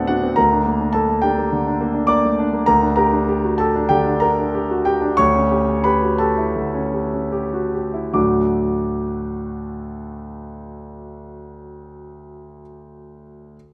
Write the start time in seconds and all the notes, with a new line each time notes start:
Already playing: D2 A2 B3 C4 D4 F#4 G4 A4 F#5 G5 A5
0.07 D4 F#4 F#5
0.23 C4
0.36 D2 A#4 A#5
0.52 D4
0.67 A#3
0.80 D4
0.93 A#3 A4 A5
1.09 A3
1.22 D4 G4 G5
1.38 A#3
1.53 D3
1.67 D4
1.81 A#3
1.94 D4
2.07 A#3 D5 D6
2.25 A3
2.39 D4
2.53 A#3
2.66 D2 A#4 A#5
2.82 D4
2.96 G4 A#4 A#5
3.13 D4
3.29 G4
3.44 F#4
3.58 G4 A4 A5
3.76 D4
3.89 D3 G4 G5
4.06 D4
4.20 G4 A#4 A#5
4.39 D4
4.55 G4
4.71 F#4
4.85 G4 G5
5.02 D4
5.17 D2 C#5 C#6
5.36 C#4
5.51 G4
5.69 C#4
5.84 G4 B4 B5
6.03 F#4
6.18 G4 A4 A5
6.38 E4
6.56 D2
6.75 C#4
6.94 G4
7.14 C#4
7.32 G4
7.54 F#4
7.74 G4
7.94 E4
8.13 D2 A2 F#3 A3 D4 F#4 D6